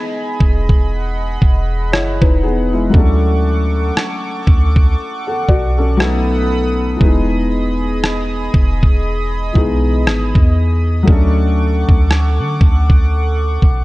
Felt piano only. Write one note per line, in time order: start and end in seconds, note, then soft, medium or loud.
0.00 2.88 E3 medium
0.00 1.87 G#3 medium
0.00 1.88 B3 medium
0.00 1.89 D#4 medium
0.00 1.91 G#4 medium
1.92 2.21 E4 medium
1.92 2.20 C#5 medium
2.22 2.42 D#4 medium
2.22 2.42 B4 medium
2.43 2.72 B3 medium
2.43 2.71 G#4 medium
2.73 3.21 G#3 medium
2.73 3.21 E4 medium
2.90 5.93 F#3 medium
2.90 5.94 A3 medium
2.94 4.94 C#4 medium
2.94 4.95 D4 medium
2.99 4.96 A4 medium
5.27 5.48 A4 medium
5.27 5.47 F#5 medium
5.49 5.77 F#4 medium
5.49 5.76 D5 medium
5.78 6.26 C#4 medium
5.78 6.00 A4 medium
5.97 7.00 F#3 medium
5.97 7.00 A3 medium
5.97 7.00 B3 medium
5.97 7.01 D#4 medium
6.02 7.02 A4 medium
6.96 9.49 E3 medium
6.96 9.50 G#3 medium
7.01 9.51 B3 medium
7.01 9.52 D#4 medium
7.06 9.54 G#4 medium
9.53 11.06 E3 medium
9.53 11.07 G#3 medium
9.53 11.08 B3 medium
9.53 11.08 D#4 medium
9.58 11.09 G#4 medium
11.03 13.84 F#3 medium
11.03 13.84 A3 medium
11.08 13.84 C#4 medium
11.08 13.84 D4 medium
11.12 13.84 A4 medium